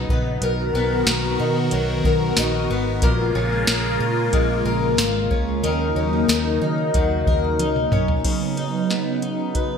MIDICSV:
0, 0, Header, 1, 5, 480
1, 0, Start_track
1, 0, Tempo, 652174
1, 308, Time_signature, 4, 2, 24, 8
1, 7197, End_track
2, 0, Start_track
2, 0, Title_t, "Twelve-string acoustic guitar"
2, 0, Program_c, 0, 25
2, 0, Note_on_c, 0, 49, 84
2, 0, Note_on_c, 0, 54, 77
2, 0, Note_on_c, 0, 63, 62
2, 0, Note_on_c, 0, 71, 67
2, 75, Note_on_c, 0, 59, 61
2, 305, Note_off_c, 0, 49, 0
2, 315, Note_off_c, 0, 71, 0
2, 318, Note_on_c, 0, 70, 66
2, 549, Note_off_c, 0, 59, 0
2, 552, Note_on_c, 0, 59, 70
2, 787, Note_off_c, 0, 70, 0
2, 790, Note_on_c, 0, 70, 67
2, 1024, Note_off_c, 0, 63, 0
2, 1027, Note_on_c, 0, 63, 61
2, 1265, Note_off_c, 0, 54, 0
2, 1267, Note_on_c, 0, 54, 70
2, 1507, Note_off_c, 0, 70, 0
2, 1510, Note_on_c, 0, 70, 66
2, 1740, Note_off_c, 0, 63, 0
2, 1749, Note_on_c, 0, 63, 67
2, 1982, Note_off_c, 0, 59, 0
2, 1991, Note_on_c, 0, 59, 65
2, 2227, Note_on_c, 0, 46, 83
2, 2229, Note_off_c, 0, 70, 0
2, 2232, Note_on_c, 0, 70, 74
2, 2276, Note_off_c, 0, 54, 0
2, 2276, Note_off_c, 0, 63, 0
2, 2277, Note_off_c, 0, 59, 0
2, 2467, Note_on_c, 0, 61, 68
2, 2705, Note_off_c, 0, 70, 0
2, 2708, Note_on_c, 0, 70, 77
2, 2947, Note_on_c, 0, 65, 62
2, 3188, Note_on_c, 0, 56, 74
2, 3423, Note_off_c, 0, 70, 0
2, 3426, Note_on_c, 0, 70, 71
2, 3658, Note_off_c, 0, 65, 0
2, 3667, Note_on_c, 0, 65, 66
2, 3903, Note_off_c, 0, 61, 0
2, 3906, Note_on_c, 0, 61, 59
2, 4147, Note_off_c, 0, 46, 0
2, 4147, Note_on_c, 0, 51, 83
2, 4148, Note_off_c, 0, 70, 0
2, 4151, Note_on_c, 0, 70, 72
2, 4195, Note_off_c, 0, 65, 0
2, 4196, Note_off_c, 0, 56, 0
2, 4384, Note_off_c, 0, 61, 0
2, 4387, Note_on_c, 0, 61, 64
2, 4617, Note_off_c, 0, 70, 0
2, 4625, Note_on_c, 0, 70, 70
2, 4869, Note_on_c, 0, 63, 59
2, 5113, Note_on_c, 0, 54, 72
2, 5344, Note_off_c, 0, 70, 0
2, 5353, Note_on_c, 0, 70, 66
2, 5589, Note_off_c, 0, 63, 0
2, 5592, Note_on_c, 0, 63, 65
2, 5830, Note_off_c, 0, 61, 0
2, 5833, Note_on_c, 0, 61, 59
2, 6065, Note_off_c, 0, 51, 0
2, 6068, Note_on_c, 0, 49, 70
2, 6118, Note_off_c, 0, 70, 0
2, 6303, Note_off_c, 0, 63, 0
2, 6306, Note_on_c, 0, 63, 51
2, 6328, Note_off_c, 0, 61, 0
2, 6548, Note_on_c, 0, 59, 52
2, 6785, Note_off_c, 0, 63, 0
2, 6788, Note_on_c, 0, 63, 51
2, 7032, Note_on_c, 0, 71, 59
2, 7197, Note_off_c, 0, 49, 0
2, 7197, Note_off_c, 0, 54, 0
2, 7197, Note_off_c, 0, 59, 0
2, 7197, Note_off_c, 0, 63, 0
2, 7197, Note_off_c, 0, 71, 0
2, 7197, End_track
3, 0, Start_track
3, 0, Title_t, "Analog synth pad"
3, 0, Program_c, 1, 89
3, 0, Note_on_c, 1, 49, 75
3, 0, Note_on_c, 1, 54, 65
3, 0, Note_on_c, 1, 59, 69
3, 0, Note_on_c, 1, 63, 82
3, 290, Note_off_c, 1, 49, 0
3, 290, Note_off_c, 1, 63, 0
3, 292, Note_off_c, 1, 54, 0
3, 304, Note_on_c, 1, 70, 67
3, 306, Note_on_c, 1, 66, 85
3, 312, Note_on_c, 1, 51, 75
3, 2201, Note_off_c, 1, 59, 0
3, 2207, Note_off_c, 1, 70, 0
3, 2208, Note_off_c, 1, 66, 0
3, 2211, Note_off_c, 1, 51, 0
3, 2222, Note_on_c, 1, 56, 69
3, 2223, Note_on_c, 1, 65, 86
3, 2224, Note_on_c, 1, 49, 74
3, 2225, Note_on_c, 1, 58, 67
3, 4126, Note_off_c, 1, 56, 0
3, 4126, Note_off_c, 1, 65, 0
3, 4127, Note_off_c, 1, 58, 0
3, 4140, Note_on_c, 1, 58, 72
3, 4141, Note_on_c, 1, 63, 83
3, 4143, Note_on_c, 1, 54, 68
3, 6036, Note_off_c, 1, 49, 0
3, 6044, Note_off_c, 1, 58, 0
3, 6045, Note_off_c, 1, 63, 0
3, 6046, Note_off_c, 1, 54, 0
3, 6060, Note_on_c, 1, 49, 69
3, 6063, Note_on_c, 1, 59, 63
3, 6065, Note_on_c, 1, 54, 59
3, 6065, Note_on_c, 1, 63, 75
3, 7197, Note_off_c, 1, 49, 0
3, 7197, Note_off_c, 1, 54, 0
3, 7197, Note_off_c, 1, 59, 0
3, 7197, Note_off_c, 1, 63, 0
3, 7197, End_track
4, 0, Start_track
4, 0, Title_t, "Fingered electric bass"
4, 0, Program_c, 2, 33
4, 63, Note_on_c, 2, 34, 90
4, 276, Note_off_c, 2, 34, 0
4, 305, Note_on_c, 2, 35, 113
4, 517, Note_off_c, 2, 35, 0
4, 543, Note_on_c, 2, 35, 101
4, 756, Note_off_c, 2, 35, 0
4, 783, Note_on_c, 2, 35, 96
4, 996, Note_off_c, 2, 35, 0
4, 1026, Note_on_c, 2, 47, 101
4, 1238, Note_off_c, 2, 47, 0
4, 1264, Note_on_c, 2, 35, 103
4, 1477, Note_off_c, 2, 35, 0
4, 1503, Note_on_c, 2, 35, 104
4, 1716, Note_off_c, 2, 35, 0
4, 1740, Note_on_c, 2, 34, 99
4, 1955, Note_off_c, 2, 34, 0
4, 1984, Note_on_c, 2, 32, 92
4, 2197, Note_off_c, 2, 32, 0
4, 2225, Note_on_c, 2, 34, 106
4, 2437, Note_off_c, 2, 34, 0
4, 2468, Note_on_c, 2, 34, 97
4, 2679, Note_off_c, 2, 34, 0
4, 2709, Note_on_c, 2, 34, 105
4, 2919, Note_off_c, 2, 34, 0
4, 2940, Note_on_c, 2, 46, 95
4, 3155, Note_off_c, 2, 46, 0
4, 3185, Note_on_c, 2, 34, 101
4, 3398, Note_off_c, 2, 34, 0
4, 3423, Note_on_c, 2, 34, 104
4, 3637, Note_off_c, 2, 34, 0
4, 3660, Note_on_c, 2, 32, 99
4, 3875, Note_off_c, 2, 32, 0
4, 3907, Note_on_c, 2, 37, 94
4, 4118, Note_off_c, 2, 37, 0
4, 4148, Note_on_c, 2, 39, 107
4, 4359, Note_off_c, 2, 39, 0
4, 4385, Note_on_c, 2, 39, 98
4, 4597, Note_off_c, 2, 39, 0
4, 4623, Note_on_c, 2, 39, 92
4, 4837, Note_off_c, 2, 39, 0
4, 4867, Note_on_c, 2, 51, 92
4, 5079, Note_off_c, 2, 51, 0
4, 5109, Note_on_c, 2, 39, 106
4, 5319, Note_off_c, 2, 39, 0
4, 5350, Note_on_c, 2, 39, 102
4, 5584, Note_off_c, 2, 39, 0
4, 5584, Note_on_c, 2, 37, 95
4, 5797, Note_off_c, 2, 37, 0
4, 5827, Note_on_c, 2, 35, 91
4, 6039, Note_off_c, 2, 35, 0
4, 7197, End_track
5, 0, Start_track
5, 0, Title_t, "Drums"
5, 66, Note_on_c, 9, 36, 93
5, 139, Note_off_c, 9, 36, 0
5, 307, Note_on_c, 9, 42, 68
5, 381, Note_off_c, 9, 42, 0
5, 784, Note_on_c, 9, 54, 68
5, 785, Note_on_c, 9, 38, 103
5, 789, Note_on_c, 9, 42, 78
5, 858, Note_off_c, 9, 54, 0
5, 859, Note_off_c, 9, 38, 0
5, 863, Note_off_c, 9, 42, 0
5, 1260, Note_on_c, 9, 42, 81
5, 1334, Note_off_c, 9, 42, 0
5, 1504, Note_on_c, 9, 36, 94
5, 1577, Note_off_c, 9, 36, 0
5, 1742, Note_on_c, 9, 38, 103
5, 1743, Note_on_c, 9, 42, 76
5, 1745, Note_on_c, 9, 54, 62
5, 1815, Note_off_c, 9, 38, 0
5, 1817, Note_off_c, 9, 42, 0
5, 1819, Note_off_c, 9, 54, 0
5, 2222, Note_on_c, 9, 42, 73
5, 2225, Note_on_c, 9, 36, 107
5, 2296, Note_off_c, 9, 42, 0
5, 2298, Note_off_c, 9, 36, 0
5, 2703, Note_on_c, 9, 54, 70
5, 2704, Note_on_c, 9, 38, 111
5, 2708, Note_on_c, 9, 42, 72
5, 2776, Note_off_c, 9, 54, 0
5, 2778, Note_off_c, 9, 38, 0
5, 2782, Note_off_c, 9, 42, 0
5, 3186, Note_on_c, 9, 42, 80
5, 3188, Note_on_c, 9, 36, 96
5, 3259, Note_off_c, 9, 42, 0
5, 3262, Note_off_c, 9, 36, 0
5, 3668, Note_on_c, 9, 38, 113
5, 3669, Note_on_c, 9, 42, 77
5, 3671, Note_on_c, 9, 54, 64
5, 3741, Note_off_c, 9, 38, 0
5, 3743, Note_off_c, 9, 42, 0
5, 3745, Note_off_c, 9, 54, 0
5, 3908, Note_on_c, 9, 36, 91
5, 3982, Note_off_c, 9, 36, 0
5, 4150, Note_on_c, 9, 42, 75
5, 4224, Note_off_c, 9, 42, 0
5, 4630, Note_on_c, 9, 54, 68
5, 4632, Note_on_c, 9, 38, 101
5, 4636, Note_on_c, 9, 42, 79
5, 4704, Note_off_c, 9, 54, 0
5, 4705, Note_off_c, 9, 38, 0
5, 4709, Note_off_c, 9, 42, 0
5, 5109, Note_on_c, 9, 42, 78
5, 5110, Note_on_c, 9, 36, 99
5, 5182, Note_off_c, 9, 42, 0
5, 5184, Note_off_c, 9, 36, 0
5, 5350, Note_on_c, 9, 36, 97
5, 5423, Note_off_c, 9, 36, 0
5, 5590, Note_on_c, 9, 42, 73
5, 5590, Note_on_c, 9, 48, 57
5, 5663, Note_off_c, 9, 42, 0
5, 5663, Note_off_c, 9, 48, 0
5, 5711, Note_on_c, 9, 47, 58
5, 5785, Note_off_c, 9, 47, 0
5, 5828, Note_on_c, 9, 45, 93
5, 5902, Note_off_c, 9, 45, 0
5, 5949, Note_on_c, 9, 43, 96
5, 6023, Note_off_c, 9, 43, 0
5, 6069, Note_on_c, 9, 36, 90
5, 6069, Note_on_c, 9, 42, 64
5, 6069, Note_on_c, 9, 49, 76
5, 6142, Note_off_c, 9, 42, 0
5, 6142, Note_off_c, 9, 49, 0
5, 6143, Note_off_c, 9, 36, 0
5, 6311, Note_on_c, 9, 42, 44
5, 6384, Note_off_c, 9, 42, 0
5, 6554, Note_on_c, 9, 38, 81
5, 6558, Note_on_c, 9, 42, 64
5, 6628, Note_off_c, 9, 38, 0
5, 6632, Note_off_c, 9, 42, 0
5, 6789, Note_on_c, 9, 42, 46
5, 6863, Note_off_c, 9, 42, 0
5, 7028, Note_on_c, 9, 42, 70
5, 7029, Note_on_c, 9, 36, 75
5, 7102, Note_off_c, 9, 36, 0
5, 7102, Note_off_c, 9, 42, 0
5, 7197, End_track
0, 0, End_of_file